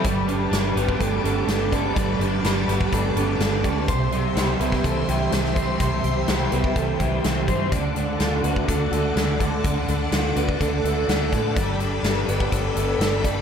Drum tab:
HH |x-x-x-x-x-x-x-x-|x-x-x-x-x-x-x-x-|x-x-x-x-x-x-x-x-|x-x-x-x-x-x-x-x-|
SD |----o-------o---|----o-------o---|----o--o----oo--|----o-------o---|
BD |o------oo-----o-|o------oo-----o-|o------oo-----o-|o------oo-o---o-|

HH |x-x-x-x-x-x-x-x-|x-x-x-x-x-x-x-x-|x-x-x-x-x-x-x-x-|
SD |----o-------o---|----o-------o---|----o-------o---|
BD |o------oo-----o-|o------oo-----o-|o------oo-----o-|